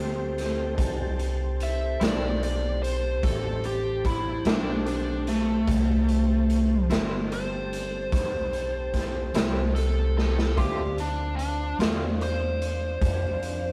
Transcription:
0.00 0.74 D2 medium
0.00 0.75 A3 medium
0.00 0.75 C4 medium
0.00 0.74 G4 medium
0.38 snare soft
0.38 closed hi-hat medium
0.76 1.97 C2 medium
0.76 5.63 C4 medium
0.76 5.63 G4 medium
0.76 5.63 A4 medium
0.76 kick loud
0.76 closed hi-hat medium
1.19 closed hi-hat medium
1.60 2.01 E5 medium
1.60 closed hi-hat medium
2.00 3.20 B1 medium
2.00 2.26 A2 soft
2.00 2.26 G3 soft
2.00 2.25 C4 medium
2.00 2.25 E4 medium
2.00 2.42 D5 medium
2.00 snare medium
2.00 closed hi-hat medium
2.43 2.82 D5 medium
2.43 closed hi-hat medium
2.83 3.22 C5 medium
2.83 closed hi-hat medium
3.23 4.42 A1 medium
3.23 3.63 A4 medium
3.23 kick loud
3.23 closed hi-hat medium
3.64 4.05 G4 medium
3.64 closed hi-hat soft
4.05 4.45 E4 medium
4.05 kick medium
4.05 closed hi-hat medium
4.45 5.64 B1 medium
4.45 4.71 A2 soft
4.45 4.71 G3 medium
4.45 4.71 C4 medium
4.45 4.86 D4 medium
4.45 4.71 E4 medium
4.45 snare loud
4.45 closed hi-hat medium
4.86 5.27 D4 medium
4.86 closed hi-hat medium
5.27 6.87 A3 medium
5.27 snare soft
5.27 closed hi-hat medium
5.67 6.86 C2 medium
5.67 10.53 C4 medium
5.67 10.53 G4 medium
5.67 10.53 A4 medium
5.67 kick loud
5.67 closed hi-hat medium
6.08 closed hi-hat medium
6.50 closed hi-hat medium
6.89 8.09 G1 medium
6.89 7.16 A2 medium
6.89 7.15 G3 medium
6.89 7.15 C4 medium
6.89 7.15 E4 medium
6.89 snare medium
6.89 closed hi-hat medium
7.32 9.73 C5 medium
7.32 closed hi-hat medium
7.73 closed hi-hat medium
8.12 9.31 B1 medium
8.12 kick loud
8.12 closed hi-hat medium
8.53 closed hi-hat soft
8.94 kick medium
8.94 snare soft
8.94 closed hi-hat medium
9.34 10.53 C2 medium
9.34 9.60 A2 medium
9.34 9.60 G3 medium
9.34 9.60 C4 medium
9.34 9.60 E4 medium
9.34 snare medium
9.34 closed hi-hat medium
9.75 10.15 A4 medium
9.75 closed hi-hat medium
10.18 10.57 A4 medium
10.18 snare medium
10.39 snare medium
10.56 11.76 D2 medium
10.56 10.81 D3 medium
10.56 10.82 A3 medium
10.56 10.82 C4 medium
10.56 13.72 C4 medium
10.56 13.72 D4 medium
10.56 13.72 F4 medium
10.56 10.82 F4 medium
10.56 10.97 G4 medium
10.56 kick loud
10.56 closed hi-hat medium
10.98 11.35 D4 medium
10.98 closed hi-hat medium
11.36 11.77 D4 medium
11.36 closed hi-hat medium
11.79 12.98 E2 medium
11.79 12.05 D3 soft
11.79 12.05 A3 medium
11.79 12.05 C4 medium
11.79 12.04 F4 medium
11.79 snare loud
11.79 closed hi-hat medium
12.21 13.72 C5 medium
12.21 closed hi-hat medium
12.62 closed hi-hat medium
13.01 13.72 F2 medium
13.01 kick loud
13.01 closed hi-hat medium
13.43 closed hi-hat medium

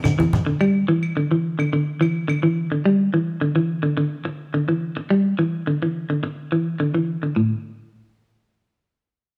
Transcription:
0.04 0.16 D3 medium
0.04 low conga medium
0.04 claves medium
0.04 shekere medium
0.19 0.41 E3 medium
0.19 high conga medium
0.33 low conga medium
0.33 shekere soft
0.47 0.58 D3 medium
0.61 0.83 G3 medium
0.61 claves medium
0.88 1.11 E3 medium
1.03 claves medium
1.17 1.28 D3 medium
1.31 1.54 E3 medium
1.59 1.70 D3 medium
1.59 claves medium
1.73 1.96 D3 medium
2.01 2.23 E3 medium
2.01 claves medium
2.28 2.40 D3 medium
2.28 claves medium
2.43 2.66 E3 medium
2.72 2.83 D3 medium
2.86 3.08 G3 medium
3.14 3.36 E3 medium
3.41 3.53 D3 medium
3.56 3.78 E3 medium
3.83 3.94 D3 medium
3.97 4.20 D3 medium
4.25 muted clean electric guitar stroke medium
4.54 4.66 D3 medium
4.69 4.91 E3 medium
4.97 muted clean electric guitar stroke medium
5.10 5.33 G3 medium
5.39 5.61 E3 medium
5.67 5.79 D3 medium
5.83 6.04 E3 medium
6.10 6.21 D3 medium
6.24 muted clean electric guitar stroke medium
6.52 6.74 E3 medium
6.80 6.91 D3 medium
6.94 7.17 E3 medium
7.23 7.34 D3 medium
7.36 7.53 A2 medium

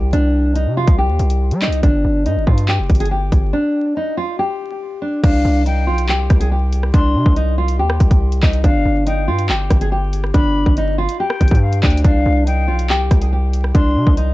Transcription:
0.00 0.12 C2 loud
0.00 0.11 G4 medium
0.13 0.68 C2 loud
0.13 0.53 D4 loud
0.13 closed hi-hat medium
0.56 0.74 D#4 medium
0.56 closed hi-hat medium
0.66 0.86 C3 loud
0.77 0.95 F4 medium
0.87 1.10 C2 loud
0.87 kick loud
0.87 closed hi-hat medium
0.98 1.58 G4 medium
1.09 1.19 D#2 loud
1.19 1.53 C2 loud
1.19 closed hi-hat medium
1.30 closed hi-hat medium
1.51 1.69 G3 loud
1.51 closed hi-hat medium
1.62 1.80 D#4 medium
1.62 clap loud
1.62 closed hi-hat medium
1.67 1.82 C2 loud
1.73 closed hi-hat medium
1.83 2.04 G1 loud
1.83 2.23 D4 medium
1.83 kick loud
1.83 closed hi-hat medium
2.04 2.27 G1 loud
2.26 2.38 G2 loud
2.26 2.44 D#4 medium
2.26 closed hi-hat medium
2.36 2.46 G1 loud
2.47 2.80 G2 loud
2.47 2.65 F4 medium
2.47 kick medium
2.58 closed hi-hat medium
2.68 2.98 G4 medium
2.68 clap loud
2.79 2.89 F1 loud
2.90 3.30 G1 loud
2.90 kick loud
2.90 closed hi-hat medium
2.95 closed hi-hat medium
3.00 3.09 G#4 medium
3.00 closed hi-hat medium
3.05 closed hi-hat medium
3.11 3.51 G4 medium
3.32 3.53 G1 loud
3.32 kick medium
3.32 closed hi-hat medium
3.53 3.93 D4 loud
3.97 4.15 D#4 medium
4.17 4.35 F4 medium
4.39 4.99 G4 medium
5.02 5.20 D4 medium
5.23 5.44 C2 loud
5.23 5.64 D4 loud
5.23 5.63 F5 loud
5.23 kick loud
5.23 closed hi-hat medium
5.23 crash loud
5.45 5.89 C2 loud
5.66 5.84 D#4 medium
5.66 6.06 G5 loud
5.66 closed hi-hat medium
5.87 6.10 B1 loud
5.87 6.05 F4 medium
5.98 closed hi-hat medium
6.09 6.29 C2 loud
6.09 6.39 G4 medium
6.09 clap loud
6.30 6.91 C2 loud
6.30 kick loud
6.30 cross-stick medium
6.30 closed hi-hat medium
6.40 6.50 G#4 medium
6.40 closed hi-hat medium
6.52 6.91 G4 medium
6.73 closed hi-hat medium
6.83 cross-stick medium
6.94 7.17 C2 loud
6.94 7.34 D4 loud
6.94 7.34 C6 loud
6.94 kick loud
6.94 closed hi-hat medium
7.15 7.25 C3 loud
7.26 7.80 C2 loud
7.26 kick loud
7.36 7.55 D#4 medium
7.36 closed hi-hat medium
7.58 7.76 F4 medium
7.68 closed hi-hat medium
7.79 7.99 D#2 loud
7.79 8.39 G4 medium
7.90 cross-stick loud
8.00 8.10 C2 loud
8.00 kick loud
8.00 closed hi-hat medium
8.11 8.41 C2 loud
8.11 kick loud
8.11 closed hi-hat medium
8.32 closed hi-hat medium
8.43 8.63 C2 loud
8.43 8.61 D#4 medium
8.43 kick loud
8.43 clap loud
8.43 open hi-hat medium
8.53 closed hi-hat medium
8.64 8.84 G1 loud
8.64 9.04 D4 loud
8.64 9.04 F5 loud
8.64 kick loud
8.64 closed hi-hat medium
8.85 9.29 G1 loud
9.07 9.25 D#4 medium
9.07 9.47 G5 medium
9.07 closed hi-hat medium
9.28 9.51 G2 medium
9.28 9.46 F4 medium
9.39 closed hi-hat medium
9.49 9.69 G1 loud
9.49 9.79 G4 medium
9.49 clap loud
9.70 10.32 G1 loud
9.70 kick loud
9.70 cross-stick medium
9.70 closed hi-hat medium
9.81 9.90 G#4 medium
9.81 closed hi-hat medium
9.92 10.32 G4 medium
10.13 closed hi-hat medium
10.24 cross-stick medium
10.34 10.65 G1 loud
10.34 10.74 D4 loud
10.34 10.74 B5 loud
10.34 kick loud
10.34 closed hi-hat medium
10.66 11.07 G1 loud
10.66 kick loud
10.77 10.95 D#4 medium
10.77 closed hi-hat medium
10.98 11.16 F4 medium
11.09 closed hi-hat medium
11.20 11.80 G4 medium
11.20 11.59 G5 medium
11.30 cross-stick loud
11.41 11.51 G1 loud
11.41 kick loud
11.41 closed hi-hat medium
11.48 11.82 G2 loud
11.48 kick loud
11.48 closed hi-hat medium
11.55 closed hi-hat soft
11.62 11.82 F5 medium
11.73 closed hi-hat medium
11.83 12.04 D2 loud
11.83 12.01 D4 medium
11.83 12.03 G5 medium
11.83 kick medium
11.83 clap loud
11.83 closed hi-hat medium
11.90 closed hi-hat medium
11.97 closed hi-hat medium
12.04 12.25 C2 loud
12.04 12.45 D4 loud
12.04 12.44 F5 loud
12.04 kick loud
12.04 closed hi-hat medium
12.26 12.70 C2 loud
12.47 12.65 D#4 medium
12.47 12.87 G5 loud
12.47 closed hi-hat medium
12.68 12.91 B1 loud
12.68 12.86 F4 medium
12.79 closed hi-hat medium
12.90 13.10 C2 loud
12.90 13.20 G4 medium
12.90 clap loud
13.11 13.72 C2 loud
13.11 kick loud
13.11 cross-stick medium
13.11 closed hi-hat medium
13.21 13.30 G#4 medium
13.21 closed hi-hat medium
13.33 13.72 G4 medium
13.53 closed hi-hat medium
13.64 cross-stick medium
13.75 13.97 C2 loud
13.75 14.15 D4 loud
13.75 14.15 C6 loud
13.75 kick loud
13.75 closed hi-hat medium
13.96 14.06 C3 loud
14.07 14.34 C2 loud
14.07 kick loud
14.17 14.34 D#4 medium
14.17 closed hi-hat medium

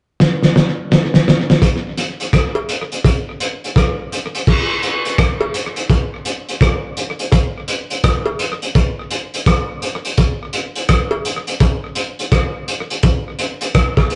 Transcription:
0.20 snare medium
0.43 snare soft
0.56 snare medium
0.92 snare medium
1.14 snare medium
1.28 snare medium
1.50 snare medium
1.62 kick loud
1.62 closed hi-hat medium
1.62 cowbell medium
1.97 closed hi-hat medium
2.20 closed hi-hat medium
2.33 kick loud
2.33 cross-stick loud
2.33 closed hi-hat medium
2.55 cowbell medium
2.69 closed hi-hat medium
2.92 closed hi-hat medium
3.04 kick loud
3.04 closed hi-hat medium
3.04 cowbell medium
3.40 closed hi-hat medium
3.64 closed hi-hat soft
3.76 kick loud
3.76 cross-stick medium
3.76 closed hi-hat medium
3.76 cowbell medium
4.12 closed hi-hat medium
4.35 closed hi-hat medium
4.47 kick loud
4.47 crash medium
4.47 cowbell medium
4.83 closed hi-hat medium
5.05 closed hi-hat medium
5.18 kick loud
5.18 cross-stick loud
5.18 closed hi-hat medium
5.41 cowbell medium
5.54 closed hi-hat medium
5.76 closed hi-hat medium
5.90 kick loud
5.90 closed hi-hat medium
5.90 cowbell medium
6.25 closed hi-hat medium
6.49 closed hi-hat soft
6.61 kick loud
6.61 cross-stick loud
6.61 closed hi-hat medium
6.61 cowbell medium
6.97 closed hi-hat medium
7.19 closed hi-hat medium
7.32 kick loud
7.32 closed hi-hat medium
7.32 cowbell medium
7.68 closed hi-hat medium
7.90 closed hi-hat medium
8.04 kick loud
8.04 cross-stick loud
8.04 closed hi-hat medium
8.26 cowbell medium
8.39 closed hi-hat medium
8.62 closed hi-hat medium
8.75 kick loud
8.75 closed hi-hat medium
8.75 cowbell medium
9.11 closed hi-hat medium
9.34 closed hi-hat soft
9.46 kick loud
9.46 cross-stick loud
9.46 closed hi-hat medium
9.46 cowbell medium
9.82 closed hi-hat medium
10.05 closed hi-hat medium
10.18 kick loud
10.18 closed hi-hat medium
10.18 cowbell medium
10.53 closed hi-hat medium
10.76 closed hi-hat medium
10.89 kick loud
10.89 cross-stick loud
10.89 closed hi-hat loud
11.11 cowbell medium
11.25 closed hi-hat medium
11.47 closed hi-hat medium
11.60 kick loud
11.60 closed hi-hat medium
11.60 cowbell medium
11.95 closed hi-hat medium
12.19 closed hi-hat medium
12.32 kick loud
12.32 cross-stick medium
12.32 closed hi-hat medium
12.32 cowbell medium
12.68 closed hi-hat medium
12.90 closed hi-hat medium
13.03 kick loud
13.03 closed hi-hat medium
13.03 cowbell medium
13.39 closed hi-hat medium
13.61 closed hi-hat medium
13.75 kick loud
13.75 cross-stick loud
13.75 closed hi-hat loud
13.97 kick medium
13.97 cross-stick medium
13.97 cowbell medium
14.10 closed hi-hat medium

